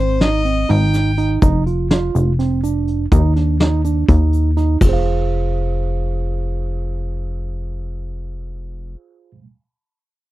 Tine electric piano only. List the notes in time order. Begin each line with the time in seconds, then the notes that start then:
Already playing: C4
0.21 D#4
0.45 C4
0.69 D#4
1.18 D#4
1.42 D#4
1.67 F4
1.91 F4
2.39 C4
2.64 D4
3.12 D#4
3.36 D4
3.60 D#4
3.85 D4
4.09 D#4
4.57 D#4
4.81 F4 G#4
4.89 C5
4.93 F5